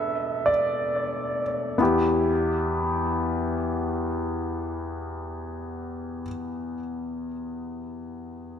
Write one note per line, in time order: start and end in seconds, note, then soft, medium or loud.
0.00 1.76 B2 soft
0.00 1.76 A3 soft
0.00 1.76 D4 soft
0.00 1.82 A4 medium
0.00 0.50 E5 medium
0.46 1.41 D5 medium
1.78 6.23 E2 medium
1.78 6.21 B3 medium
1.78 6.23 E4 soft
1.82 6.25 G4 medium